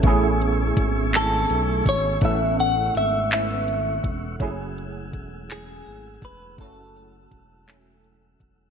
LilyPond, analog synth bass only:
\new Staff \with { instrumentName = "Analog synth bass" } { \clef bass \time 6/8 \key fis \minor \tempo 4. = 55 a,,4 gis,,4 b,,8 gis,,8 | a,,4 gis,,4. e,,8 | fis,,4 e,,4 gis,,8 e,,8 | fis,,4 e,,4. e,,8 | }